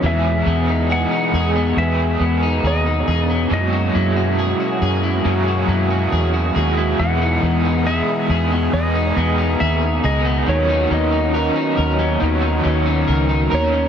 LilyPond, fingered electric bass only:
\new Staff \with { instrumentName = "Fingered electric bass" } { \clef bass \time 4/4 \key e \lydian \tempo 4 = 69 e,8 e,8. r16 e,8 e,8 e,8 dis,8 e,8 | fis,8 fis,8. r16 fis,8 fis,8 fis,8 e,8 dis,8 | e,8 e,8. r16 e,8 e,8 e,8 dis,8 cis,8 | dis,8 dis,8. r16 dis,8 dis,8 dis,8 cis,8 dis,8 | }